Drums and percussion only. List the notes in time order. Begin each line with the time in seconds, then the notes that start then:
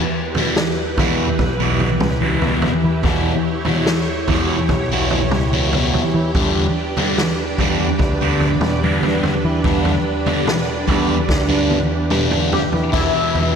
0.35 floor tom
0.56 snare
0.97 kick, floor tom
1.39 kick, floor tom
1.80 floor tom
2.00 mid tom
2.42 floor tom
2.62 floor tom
3.03 kick, floor tom
3.65 floor tom
3.86 snare
4.28 kick, floor tom
4.69 kick, floor tom
5.10 floor tom
5.31 mid tom
5.73 floor tom
5.94 floor tom
6.35 kick, floor tom
6.97 floor tom
7.18 snare
7.58 kick, floor tom
7.99 kick, floor tom
8.40 floor tom
8.61 mid tom
9.03 floor tom
9.23 floor tom
9.64 kick, floor tom
9.85 floor tom
10.26 floor tom
10.47 snare, mid tom
10.88 kick, floor tom
11.29 kick, snare
11.71 high tom
12.11 mid tom
12.31 mid tom
12.53 floor tom
12.72 floor tom
12.93 kick, floor tom, crash
13.35 floor tom